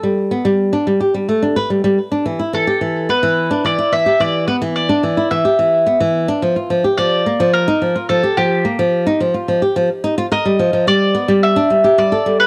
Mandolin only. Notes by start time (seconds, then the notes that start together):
2.54 A4
3.10 B4
3.66 D5
3.93 E5
4.21 D5
4.48 B4
4.76 D5
5.31 E5
6.98 D5
7.54 A#4
8.09 A4
8.37 G4
10.32 D#5
10.88 D5
11.43 E5
11.99 D5
12.40 B4